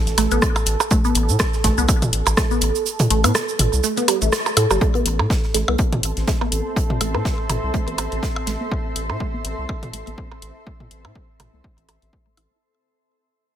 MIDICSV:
0, 0, Header, 1, 7, 480
1, 0, Start_track
1, 0, Key_signature, 0, "minor"
1, 0, Tempo, 487805
1, 895, Time_signature, 4, 2, 24, 8
1, 13340, End_track
2, 0, Start_track
2, 0, Title_t, "Ambient pad"
2, 0, Program_c, 0, 92
2, 4735, Note_on_c, 0, 60, 82
2, 4944, Note_on_c, 0, 69, 82
2, 5058, Note_on_c, 0, 84, 74
2, 5232, Note_on_c, 0, 76, 81
2, 12415, Note_off_c, 0, 60, 0
2, 12415, Note_off_c, 0, 69, 0
2, 12415, Note_off_c, 0, 76, 0
2, 12415, Note_off_c, 0, 84, 0
2, 13340, End_track
3, 0, Start_track
3, 0, Title_t, "Synth texture"
3, 0, Program_c, 1, 99
3, 0, Note_on_c, 1, 69, 83
3, 4724, Note_off_c, 1, 69, 0
3, 4735, Note_on_c, 1, 69, 81
3, 12426, Note_off_c, 1, 69, 0
3, 13340, End_track
4, 0, Start_track
4, 0, Title_t, "Synth pluck"
4, 0, Program_c, 2, 84
4, 175, Note_on_c, 2, 57, 78
4, 256, Note_off_c, 2, 57, 0
4, 310, Note_on_c, 2, 59, 78
4, 352, Note_off_c, 2, 59, 0
4, 895, Note_on_c, 2, 57, 86
4, 976, Note_off_c, 2, 57, 0
4, 1031, Note_on_c, 2, 59, 76
4, 1073, Note_off_c, 2, 59, 0
4, 1616, Note_on_c, 2, 57, 79
4, 1697, Note_off_c, 2, 57, 0
4, 1750, Note_on_c, 2, 59, 77
4, 1792, Note_off_c, 2, 59, 0
4, 2335, Note_on_c, 2, 57, 85
4, 2416, Note_off_c, 2, 57, 0
4, 2470, Note_on_c, 2, 59, 74
4, 2512, Note_off_c, 2, 59, 0
4, 3055, Note_on_c, 2, 57, 78
4, 3136, Note_off_c, 2, 57, 0
4, 3190, Note_on_c, 2, 59, 81
4, 3232, Note_off_c, 2, 59, 0
4, 3775, Note_on_c, 2, 57, 87
4, 3856, Note_off_c, 2, 57, 0
4, 3910, Note_on_c, 2, 59, 77
4, 3952, Note_off_c, 2, 59, 0
4, 4015, Note_on_c, 2, 55, 78
4, 4069, Note_off_c, 2, 55, 0
4, 4150, Note_on_c, 2, 57, 75
4, 4175, Note_off_c, 2, 57, 0
4, 4495, Note_on_c, 2, 69, 79
4, 4549, Note_off_c, 2, 69, 0
4, 4630, Note_on_c, 2, 55, 82
4, 4655, Note_off_c, 2, 55, 0
4, 4735, Note_on_c, 2, 57, 83
4, 4816, Note_off_c, 2, 57, 0
4, 4870, Note_on_c, 2, 59, 76
4, 4912, Note_off_c, 2, 59, 0
4, 5455, Note_on_c, 2, 57, 74
4, 5536, Note_off_c, 2, 57, 0
4, 5590, Note_on_c, 2, 59, 76
4, 5632, Note_off_c, 2, 59, 0
4, 6175, Note_on_c, 2, 57, 83
4, 6256, Note_off_c, 2, 57, 0
4, 6309, Note_on_c, 2, 59, 76
4, 6352, Note_off_c, 2, 59, 0
4, 6894, Note_on_c, 2, 57, 81
4, 6976, Note_off_c, 2, 57, 0
4, 7029, Note_on_c, 2, 59, 74
4, 7072, Note_off_c, 2, 59, 0
4, 7614, Note_on_c, 2, 57, 81
4, 7696, Note_off_c, 2, 57, 0
4, 7749, Note_on_c, 2, 59, 78
4, 7792, Note_off_c, 2, 59, 0
4, 8334, Note_on_c, 2, 57, 76
4, 8416, Note_off_c, 2, 57, 0
4, 8469, Note_on_c, 2, 59, 75
4, 8512, Note_off_c, 2, 59, 0
4, 9055, Note_on_c, 2, 57, 81
4, 9136, Note_off_c, 2, 57, 0
4, 9189, Note_on_c, 2, 59, 75
4, 9232, Note_off_c, 2, 59, 0
4, 9775, Note_on_c, 2, 57, 71
4, 9856, Note_off_c, 2, 57, 0
4, 9910, Note_on_c, 2, 59, 71
4, 9952, Note_off_c, 2, 59, 0
4, 10495, Note_on_c, 2, 57, 77
4, 10576, Note_off_c, 2, 57, 0
4, 10630, Note_on_c, 2, 59, 76
4, 10672, Note_off_c, 2, 59, 0
4, 11215, Note_on_c, 2, 57, 72
4, 11296, Note_off_c, 2, 57, 0
4, 11350, Note_on_c, 2, 59, 74
4, 11392, Note_off_c, 2, 59, 0
4, 11935, Note_on_c, 2, 59, 97
4, 11989, Note_off_c, 2, 59, 0
4, 12070, Note_on_c, 2, 57, 70
4, 12112, Note_off_c, 2, 57, 0
4, 12175, Note_on_c, 2, 64, 97
4, 12256, Note_off_c, 2, 64, 0
4, 12309, Note_on_c, 2, 60, 74
4, 12352, Note_off_c, 2, 60, 0
4, 13340, End_track
5, 0, Start_track
5, 0, Title_t, "Analog synth bass"
5, 0, Program_c, 3, 38
5, 69, Note_on_c, 3, 33, 108
5, 139, Note_off_c, 3, 33, 0
5, 175, Note_on_c, 3, 33, 87
5, 264, Note_off_c, 3, 33, 0
5, 309, Note_on_c, 3, 33, 90
5, 379, Note_off_c, 3, 33, 0
5, 654, Note_on_c, 3, 33, 90
5, 744, Note_off_c, 3, 33, 0
5, 1135, Note_on_c, 3, 33, 105
5, 1269, Note_on_c, 3, 45, 91
5, 1284, Note_off_c, 3, 33, 0
5, 1339, Note_off_c, 3, 45, 0
5, 1615, Note_on_c, 3, 33, 98
5, 1704, Note_off_c, 3, 33, 0
5, 1750, Note_on_c, 3, 36, 92
5, 1819, Note_off_c, 3, 36, 0
5, 1990, Note_on_c, 3, 33, 103
5, 2059, Note_off_c, 3, 33, 0
5, 2096, Note_on_c, 3, 33, 87
5, 2184, Note_off_c, 3, 33, 0
5, 2230, Note_on_c, 3, 33, 90
5, 2299, Note_off_c, 3, 33, 0
5, 2576, Note_on_c, 3, 33, 92
5, 2664, Note_off_c, 3, 33, 0
5, 3054, Note_on_c, 3, 33, 108
5, 3189, Note_on_c, 3, 45, 96
5, 3204, Note_off_c, 3, 33, 0
5, 3259, Note_off_c, 3, 45, 0
5, 3535, Note_on_c, 3, 33, 96
5, 3624, Note_off_c, 3, 33, 0
5, 3669, Note_on_c, 3, 36, 97
5, 3739, Note_off_c, 3, 36, 0
5, 4150, Note_on_c, 3, 33, 81
5, 4219, Note_off_c, 3, 33, 0
5, 4495, Note_on_c, 3, 45, 95
5, 4584, Note_off_c, 3, 45, 0
5, 4630, Note_on_c, 3, 31, 83
5, 4699, Note_off_c, 3, 31, 0
5, 4975, Note_on_c, 3, 33, 96
5, 5110, Note_on_c, 3, 45, 94
5, 5125, Note_off_c, 3, 33, 0
5, 5179, Note_off_c, 3, 45, 0
5, 5456, Note_on_c, 3, 33, 95
5, 5544, Note_off_c, 3, 33, 0
5, 5590, Note_on_c, 3, 36, 93
5, 5659, Note_off_c, 3, 36, 0
5, 5830, Note_on_c, 3, 33, 97
5, 5899, Note_off_c, 3, 33, 0
5, 5935, Note_on_c, 3, 33, 87
5, 6024, Note_off_c, 3, 33, 0
5, 6070, Note_on_c, 3, 33, 88
5, 6139, Note_off_c, 3, 33, 0
5, 6415, Note_on_c, 3, 33, 93
5, 6504, Note_off_c, 3, 33, 0
5, 6896, Note_on_c, 3, 33, 100
5, 7030, Note_on_c, 3, 45, 91
5, 7045, Note_off_c, 3, 33, 0
5, 7099, Note_off_c, 3, 45, 0
5, 7376, Note_on_c, 3, 33, 91
5, 7464, Note_off_c, 3, 33, 0
5, 7511, Note_on_c, 3, 36, 87
5, 7580, Note_off_c, 3, 36, 0
5, 7750, Note_on_c, 3, 33, 97
5, 7819, Note_off_c, 3, 33, 0
5, 7855, Note_on_c, 3, 33, 82
5, 7944, Note_off_c, 3, 33, 0
5, 7990, Note_on_c, 3, 33, 86
5, 8059, Note_off_c, 3, 33, 0
5, 8335, Note_on_c, 3, 33, 89
5, 8424, Note_off_c, 3, 33, 0
5, 8815, Note_on_c, 3, 33, 99
5, 8950, Note_on_c, 3, 45, 89
5, 8965, Note_off_c, 3, 33, 0
5, 9020, Note_off_c, 3, 45, 0
5, 9296, Note_on_c, 3, 33, 91
5, 9384, Note_off_c, 3, 33, 0
5, 9430, Note_on_c, 3, 36, 90
5, 9499, Note_off_c, 3, 36, 0
5, 9670, Note_on_c, 3, 33, 98
5, 9739, Note_off_c, 3, 33, 0
5, 9775, Note_on_c, 3, 33, 80
5, 9864, Note_off_c, 3, 33, 0
5, 9910, Note_on_c, 3, 33, 87
5, 9979, Note_off_c, 3, 33, 0
5, 10256, Note_on_c, 3, 33, 91
5, 10344, Note_off_c, 3, 33, 0
5, 10735, Note_on_c, 3, 33, 100
5, 10870, Note_on_c, 3, 45, 88
5, 10885, Note_off_c, 3, 33, 0
5, 10939, Note_off_c, 3, 45, 0
5, 11216, Note_on_c, 3, 33, 93
5, 11304, Note_off_c, 3, 33, 0
5, 11351, Note_on_c, 3, 36, 90
5, 11420, Note_off_c, 3, 36, 0
5, 11591, Note_on_c, 3, 33, 97
5, 11660, Note_off_c, 3, 33, 0
5, 11696, Note_on_c, 3, 33, 82
5, 11784, Note_off_c, 3, 33, 0
5, 11831, Note_on_c, 3, 33, 85
5, 11900, Note_off_c, 3, 33, 0
5, 12177, Note_on_c, 3, 33, 86
5, 12265, Note_off_c, 3, 33, 0
5, 13340, End_track
6, 0, Start_track
6, 0, Title_t, "Percussion blips"
6, 175, Note_on_c, 9, 77, 54
6, 273, Note_off_c, 9, 77, 0
6, 550, Note_on_c, 9, 76, 69
6, 550, Note_on_c, 9, 77, 56
6, 648, Note_off_c, 9, 76, 0
6, 648, Note_off_c, 9, 77, 0
6, 789, Note_on_c, 9, 77, 73
6, 888, Note_off_c, 9, 77, 0
6, 1855, Note_on_c, 9, 76, 71
6, 1954, Note_off_c, 9, 76, 0
6, 2230, Note_on_c, 9, 77, 68
6, 2329, Note_off_c, 9, 77, 0
6, 3190, Note_on_c, 9, 76, 68
6, 3288, Note_off_c, 9, 76, 0
6, 3296, Note_on_c, 9, 77, 50
6, 3394, Note_off_c, 9, 77, 0
6, 4016, Note_on_c, 9, 77, 55
6, 4114, Note_off_c, 9, 77, 0
6, 4391, Note_on_c, 9, 77, 54
6, 4489, Note_off_c, 9, 77, 0
6, 4496, Note_on_c, 9, 76, 75
6, 4594, Note_off_c, 9, 76, 0
6, 4631, Note_on_c, 9, 77, 75
6, 4729, Note_off_c, 9, 77, 0
6, 5111, Note_on_c, 9, 77, 55
6, 5209, Note_off_c, 9, 77, 0
6, 5590, Note_on_c, 9, 76, 67
6, 5689, Note_off_c, 9, 76, 0
6, 6310, Note_on_c, 9, 77, 56
6, 6409, Note_off_c, 9, 77, 0
6, 6896, Note_on_c, 9, 76, 62
6, 6994, Note_off_c, 9, 76, 0
6, 7031, Note_on_c, 9, 77, 54
6, 7129, Note_off_c, 9, 77, 0
6, 7376, Note_on_c, 9, 77, 69
6, 7474, Note_off_c, 9, 77, 0
6, 7856, Note_on_c, 9, 77, 73
6, 7954, Note_off_c, 9, 77, 0
6, 8230, Note_on_c, 9, 76, 62
6, 8328, Note_off_c, 9, 76, 0
6, 8951, Note_on_c, 9, 77, 55
6, 9049, Note_off_c, 9, 77, 0
6, 9535, Note_on_c, 9, 76, 59
6, 9634, Note_off_c, 9, 76, 0
6, 10150, Note_on_c, 9, 77, 54
6, 10249, Note_off_c, 9, 77, 0
6, 10871, Note_on_c, 9, 76, 55
6, 10871, Note_on_c, 9, 77, 51
6, 10969, Note_off_c, 9, 76, 0
6, 10969, Note_off_c, 9, 77, 0
6, 11216, Note_on_c, 9, 77, 66
6, 11314, Note_off_c, 9, 77, 0
6, 11696, Note_on_c, 9, 77, 69
6, 11795, Note_off_c, 9, 77, 0
6, 12176, Note_on_c, 9, 76, 59
6, 12274, Note_off_c, 9, 76, 0
6, 13340, End_track
7, 0, Start_track
7, 0, Title_t, "Drums"
7, 70, Note_on_c, 9, 42, 37
7, 70, Note_on_c, 9, 69, 31
7, 72, Note_on_c, 9, 38, 35
7, 168, Note_off_c, 9, 42, 0
7, 168, Note_off_c, 9, 69, 0
7, 170, Note_off_c, 9, 38, 0
7, 175, Note_on_c, 9, 42, 96
7, 180, Note_on_c, 9, 38, 42
7, 182, Note_off_c, 9, 42, 0
7, 182, Note_on_c, 9, 42, 67
7, 278, Note_off_c, 9, 38, 0
7, 280, Note_off_c, 9, 42, 0
7, 310, Note_on_c, 9, 42, 35
7, 310, Note_on_c, 9, 69, 43
7, 408, Note_off_c, 9, 42, 0
7, 408, Note_off_c, 9, 69, 0
7, 415, Note_on_c, 9, 36, 121
7, 415, Note_on_c, 9, 37, 89
7, 415, Note_on_c, 9, 69, 50
7, 423, Note_on_c, 9, 42, 86
7, 513, Note_off_c, 9, 36, 0
7, 513, Note_off_c, 9, 37, 0
7, 513, Note_off_c, 9, 69, 0
7, 522, Note_off_c, 9, 42, 0
7, 550, Note_on_c, 9, 69, 29
7, 648, Note_off_c, 9, 69, 0
7, 650, Note_on_c, 9, 42, 76
7, 655, Note_off_c, 9, 42, 0
7, 655, Note_on_c, 9, 42, 92
7, 754, Note_off_c, 9, 42, 0
7, 790, Note_on_c, 9, 69, 42
7, 888, Note_off_c, 9, 69, 0
7, 892, Note_on_c, 9, 42, 89
7, 895, Note_on_c, 9, 36, 127
7, 895, Note_on_c, 9, 69, 53
7, 991, Note_off_c, 9, 42, 0
7, 993, Note_off_c, 9, 36, 0
7, 994, Note_off_c, 9, 69, 0
7, 1030, Note_on_c, 9, 69, 29
7, 1034, Note_on_c, 9, 42, 42
7, 1128, Note_off_c, 9, 69, 0
7, 1129, Note_off_c, 9, 42, 0
7, 1129, Note_on_c, 9, 42, 67
7, 1135, Note_off_c, 9, 42, 0
7, 1135, Note_on_c, 9, 42, 88
7, 1233, Note_off_c, 9, 42, 0
7, 1270, Note_on_c, 9, 69, 44
7, 1367, Note_on_c, 9, 38, 120
7, 1368, Note_off_c, 9, 69, 0
7, 1369, Note_on_c, 9, 42, 95
7, 1375, Note_on_c, 9, 36, 114
7, 1375, Note_on_c, 9, 37, 97
7, 1375, Note_on_c, 9, 69, 57
7, 1466, Note_off_c, 9, 38, 0
7, 1467, Note_off_c, 9, 42, 0
7, 1474, Note_off_c, 9, 36, 0
7, 1474, Note_off_c, 9, 37, 0
7, 1474, Note_off_c, 9, 69, 0
7, 1506, Note_on_c, 9, 38, 39
7, 1510, Note_on_c, 9, 69, 30
7, 1605, Note_off_c, 9, 38, 0
7, 1608, Note_off_c, 9, 69, 0
7, 1615, Note_on_c, 9, 36, 65
7, 1615, Note_on_c, 9, 38, 46
7, 1615, Note_on_c, 9, 42, 91
7, 1621, Note_off_c, 9, 42, 0
7, 1621, Note_on_c, 9, 42, 69
7, 1714, Note_off_c, 9, 36, 0
7, 1714, Note_off_c, 9, 38, 0
7, 1719, Note_off_c, 9, 42, 0
7, 1750, Note_on_c, 9, 69, 44
7, 1848, Note_off_c, 9, 69, 0
7, 1855, Note_on_c, 9, 36, 120
7, 1855, Note_on_c, 9, 69, 56
7, 1857, Note_on_c, 9, 42, 79
7, 1954, Note_off_c, 9, 36, 0
7, 1954, Note_off_c, 9, 69, 0
7, 1956, Note_off_c, 9, 42, 0
7, 1990, Note_on_c, 9, 42, 36
7, 1990, Note_on_c, 9, 47, 91
7, 1990, Note_on_c, 9, 69, 31
7, 2088, Note_off_c, 9, 42, 0
7, 2088, Note_off_c, 9, 69, 0
7, 2089, Note_off_c, 9, 47, 0
7, 2095, Note_on_c, 9, 42, 91
7, 2194, Note_off_c, 9, 42, 0
7, 2230, Note_on_c, 9, 42, 36
7, 2230, Note_on_c, 9, 69, 46
7, 2328, Note_off_c, 9, 42, 0
7, 2328, Note_off_c, 9, 69, 0
7, 2333, Note_on_c, 9, 38, 126
7, 2335, Note_on_c, 9, 36, 119
7, 2335, Note_on_c, 9, 37, 90
7, 2335, Note_on_c, 9, 69, 54
7, 2339, Note_on_c, 9, 42, 98
7, 2431, Note_off_c, 9, 38, 0
7, 2433, Note_off_c, 9, 37, 0
7, 2433, Note_off_c, 9, 69, 0
7, 2434, Note_off_c, 9, 36, 0
7, 2437, Note_off_c, 9, 42, 0
7, 2470, Note_on_c, 9, 69, 31
7, 2569, Note_off_c, 9, 69, 0
7, 2571, Note_on_c, 9, 42, 78
7, 2575, Note_off_c, 9, 42, 0
7, 2575, Note_on_c, 9, 42, 90
7, 2674, Note_off_c, 9, 42, 0
7, 2709, Note_on_c, 9, 42, 40
7, 2710, Note_on_c, 9, 69, 45
7, 2807, Note_off_c, 9, 42, 0
7, 2808, Note_off_c, 9, 69, 0
7, 2815, Note_on_c, 9, 69, 52
7, 2818, Note_on_c, 9, 42, 58
7, 2914, Note_off_c, 9, 69, 0
7, 2916, Note_off_c, 9, 42, 0
7, 2944, Note_on_c, 9, 42, 76
7, 2950, Note_on_c, 9, 47, 99
7, 2950, Note_on_c, 9, 69, 31
7, 3043, Note_off_c, 9, 42, 0
7, 3049, Note_off_c, 9, 47, 0
7, 3049, Note_off_c, 9, 69, 0
7, 3054, Note_on_c, 9, 42, 42
7, 3055, Note_off_c, 9, 42, 0
7, 3055, Note_on_c, 9, 42, 90
7, 3154, Note_off_c, 9, 42, 0
7, 3190, Note_on_c, 9, 42, 63
7, 3190, Note_on_c, 9, 69, 46
7, 3289, Note_off_c, 9, 42, 0
7, 3289, Note_off_c, 9, 69, 0
7, 3296, Note_on_c, 9, 37, 98
7, 3296, Note_on_c, 9, 42, 98
7, 3296, Note_on_c, 9, 69, 59
7, 3297, Note_on_c, 9, 38, 117
7, 3394, Note_off_c, 9, 37, 0
7, 3394, Note_off_c, 9, 69, 0
7, 3395, Note_off_c, 9, 38, 0
7, 3395, Note_off_c, 9, 42, 0
7, 3430, Note_on_c, 9, 69, 32
7, 3529, Note_off_c, 9, 69, 0
7, 3534, Note_on_c, 9, 42, 68
7, 3535, Note_off_c, 9, 42, 0
7, 3535, Note_on_c, 9, 42, 91
7, 3535, Note_on_c, 9, 47, 82
7, 3634, Note_off_c, 9, 42, 0
7, 3634, Note_off_c, 9, 47, 0
7, 3670, Note_on_c, 9, 69, 44
7, 3769, Note_off_c, 9, 69, 0
7, 3774, Note_on_c, 9, 42, 86
7, 3775, Note_on_c, 9, 69, 60
7, 3872, Note_off_c, 9, 42, 0
7, 3874, Note_off_c, 9, 69, 0
7, 3911, Note_on_c, 9, 42, 36
7, 3911, Note_on_c, 9, 69, 31
7, 4009, Note_off_c, 9, 42, 0
7, 4009, Note_off_c, 9, 69, 0
7, 4016, Note_on_c, 9, 42, 96
7, 4114, Note_off_c, 9, 42, 0
7, 4151, Note_on_c, 9, 42, 36
7, 4151, Note_on_c, 9, 69, 44
7, 4249, Note_off_c, 9, 42, 0
7, 4249, Note_off_c, 9, 69, 0
7, 4256, Note_on_c, 9, 37, 88
7, 4256, Note_on_c, 9, 69, 55
7, 4258, Note_on_c, 9, 42, 85
7, 4265, Note_on_c, 9, 38, 127
7, 4354, Note_off_c, 9, 37, 0
7, 4354, Note_off_c, 9, 69, 0
7, 4356, Note_off_c, 9, 42, 0
7, 4364, Note_off_c, 9, 38, 0
7, 4390, Note_on_c, 9, 69, 31
7, 4489, Note_off_c, 9, 69, 0
7, 4495, Note_on_c, 9, 42, 93
7, 4500, Note_off_c, 9, 42, 0
7, 4500, Note_on_c, 9, 42, 75
7, 4598, Note_off_c, 9, 42, 0
7, 4630, Note_on_c, 9, 69, 45
7, 4729, Note_off_c, 9, 69, 0
7, 4736, Note_on_c, 9, 36, 118
7, 4736, Note_on_c, 9, 42, 75
7, 4834, Note_off_c, 9, 36, 0
7, 4834, Note_off_c, 9, 42, 0
7, 4871, Note_on_c, 9, 42, 41
7, 4970, Note_off_c, 9, 42, 0
7, 4975, Note_on_c, 9, 42, 91
7, 4984, Note_off_c, 9, 42, 0
7, 4984, Note_on_c, 9, 42, 67
7, 5082, Note_off_c, 9, 42, 0
7, 5216, Note_on_c, 9, 36, 105
7, 5223, Note_on_c, 9, 42, 80
7, 5225, Note_on_c, 9, 38, 111
7, 5314, Note_off_c, 9, 36, 0
7, 5322, Note_off_c, 9, 42, 0
7, 5323, Note_off_c, 9, 38, 0
7, 5344, Note_on_c, 9, 38, 35
7, 5442, Note_off_c, 9, 38, 0
7, 5450, Note_on_c, 9, 38, 44
7, 5456, Note_on_c, 9, 42, 90
7, 5457, Note_off_c, 9, 42, 0
7, 5457, Note_on_c, 9, 42, 69
7, 5549, Note_off_c, 9, 38, 0
7, 5555, Note_off_c, 9, 42, 0
7, 5691, Note_on_c, 9, 42, 85
7, 5696, Note_on_c, 9, 36, 113
7, 5790, Note_off_c, 9, 42, 0
7, 5794, Note_off_c, 9, 36, 0
7, 5830, Note_on_c, 9, 47, 96
7, 5831, Note_on_c, 9, 42, 36
7, 5929, Note_off_c, 9, 42, 0
7, 5929, Note_off_c, 9, 47, 0
7, 5936, Note_on_c, 9, 42, 97
7, 5939, Note_off_c, 9, 42, 0
7, 5939, Note_on_c, 9, 42, 66
7, 6038, Note_off_c, 9, 42, 0
7, 6070, Note_on_c, 9, 42, 35
7, 6073, Note_on_c, 9, 38, 36
7, 6169, Note_off_c, 9, 42, 0
7, 6172, Note_off_c, 9, 38, 0
7, 6175, Note_on_c, 9, 38, 122
7, 6175, Note_on_c, 9, 42, 87
7, 6176, Note_on_c, 9, 36, 103
7, 6273, Note_off_c, 9, 38, 0
7, 6273, Note_off_c, 9, 42, 0
7, 6274, Note_off_c, 9, 36, 0
7, 6416, Note_on_c, 9, 42, 85
7, 6418, Note_off_c, 9, 42, 0
7, 6418, Note_on_c, 9, 42, 64
7, 6516, Note_off_c, 9, 42, 0
7, 6656, Note_on_c, 9, 36, 120
7, 6660, Note_on_c, 9, 42, 85
7, 6754, Note_off_c, 9, 36, 0
7, 6758, Note_off_c, 9, 42, 0
7, 6791, Note_on_c, 9, 47, 90
7, 6889, Note_off_c, 9, 47, 0
7, 6895, Note_on_c, 9, 42, 92
7, 6901, Note_off_c, 9, 42, 0
7, 6901, Note_on_c, 9, 42, 68
7, 6999, Note_off_c, 9, 42, 0
7, 7136, Note_on_c, 9, 36, 103
7, 7138, Note_on_c, 9, 38, 116
7, 7141, Note_on_c, 9, 42, 80
7, 7234, Note_off_c, 9, 36, 0
7, 7236, Note_off_c, 9, 38, 0
7, 7240, Note_off_c, 9, 42, 0
7, 7375, Note_on_c, 9, 42, 90
7, 7376, Note_on_c, 9, 47, 83
7, 7379, Note_off_c, 9, 42, 0
7, 7379, Note_on_c, 9, 42, 69
7, 7474, Note_off_c, 9, 47, 0
7, 7478, Note_off_c, 9, 42, 0
7, 7615, Note_on_c, 9, 42, 75
7, 7616, Note_on_c, 9, 36, 114
7, 7713, Note_off_c, 9, 42, 0
7, 7714, Note_off_c, 9, 36, 0
7, 7750, Note_on_c, 9, 42, 35
7, 7849, Note_off_c, 9, 42, 0
7, 7852, Note_on_c, 9, 42, 67
7, 7855, Note_off_c, 9, 42, 0
7, 7855, Note_on_c, 9, 42, 94
7, 7954, Note_off_c, 9, 42, 0
7, 7990, Note_on_c, 9, 42, 36
7, 8089, Note_off_c, 9, 42, 0
7, 8096, Note_on_c, 9, 36, 103
7, 8097, Note_on_c, 9, 38, 119
7, 8102, Note_on_c, 9, 42, 82
7, 8194, Note_off_c, 9, 36, 0
7, 8195, Note_off_c, 9, 38, 0
7, 8200, Note_off_c, 9, 42, 0
7, 8329, Note_on_c, 9, 38, 96
7, 8336, Note_on_c, 9, 42, 90
7, 8340, Note_off_c, 9, 42, 0
7, 8340, Note_on_c, 9, 42, 77
7, 8427, Note_off_c, 9, 38, 0
7, 8438, Note_off_c, 9, 42, 0
7, 8576, Note_on_c, 9, 36, 125
7, 8674, Note_off_c, 9, 36, 0
7, 8815, Note_on_c, 9, 42, 96
7, 8914, Note_off_c, 9, 42, 0
7, 9056, Note_on_c, 9, 36, 104
7, 9154, Note_off_c, 9, 36, 0
7, 9295, Note_on_c, 9, 42, 88
7, 9394, Note_off_c, 9, 42, 0
7, 9536, Note_on_c, 9, 36, 115
7, 9634, Note_off_c, 9, 36, 0
7, 9670, Note_on_c, 9, 42, 37
7, 9670, Note_on_c, 9, 47, 90
7, 9768, Note_off_c, 9, 47, 0
7, 9769, Note_off_c, 9, 42, 0
7, 9776, Note_on_c, 9, 42, 95
7, 9874, Note_off_c, 9, 42, 0
7, 9910, Note_on_c, 9, 42, 35
7, 10009, Note_off_c, 9, 42, 0
7, 10015, Note_on_c, 9, 36, 101
7, 10114, Note_off_c, 9, 36, 0
7, 10255, Note_on_c, 9, 42, 86
7, 10354, Note_off_c, 9, 42, 0
7, 10496, Note_on_c, 9, 36, 114
7, 10594, Note_off_c, 9, 36, 0
7, 10630, Note_on_c, 9, 47, 83
7, 10729, Note_off_c, 9, 47, 0
7, 10735, Note_on_c, 9, 42, 88
7, 10834, Note_off_c, 9, 42, 0
7, 10976, Note_on_c, 9, 36, 96
7, 11074, Note_off_c, 9, 36, 0
7, 11215, Note_on_c, 9, 42, 88
7, 11216, Note_on_c, 9, 47, 71
7, 11314, Note_off_c, 9, 42, 0
7, 11314, Note_off_c, 9, 47, 0
7, 11456, Note_on_c, 9, 36, 113
7, 11554, Note_off_c, 9, 36, 0
7, 11590, Note_on_c, 9, 42, 36
7, 11689, Note_off_c, 9, 42, 0
7, 11696, Note_on_c, 9, 42, 90
7, 11794, Note_off_c, 9, 42, 0
7, 11831, Note_on_c, 9, 42, 33
7, 11929, Note_off_c, 9, 42, 0
7, 11936, Note_on_c, 9, 36, 100
7, 12034, Note_off_c, 9, 36, 0
7, 12176, Note_on_c, 9, 42, 88
7, 12274, Note_off_c, 9, 42, 0
7, 13340, End_track
0, 0, End_of_file